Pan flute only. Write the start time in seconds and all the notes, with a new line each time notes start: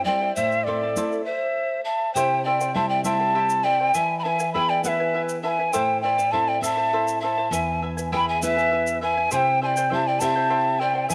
0.04 D5
0.36 C5
0.66 A4
1.25 C5
1.85 E5
2.14 C5
2.44 D5
2.74 E5
2.89 D5
3.04 E5
3.63 D5
3.94 E5
4.19 G#5
4.24 E5
4.55 G5
4.69 D5
4.83 B4
5.43 E5
5.72 C5
6.03 D5
6.33 E5
6.47 D5
6.60 E5
7.20 E5
7.51 E5
8.13 G5
8.29 E5
8.42 B4
9.02 E5
9.32 C5
9.63 D5
9.93 E5
10.08 D5
10.22 E5
10.81 D5
11.11 E5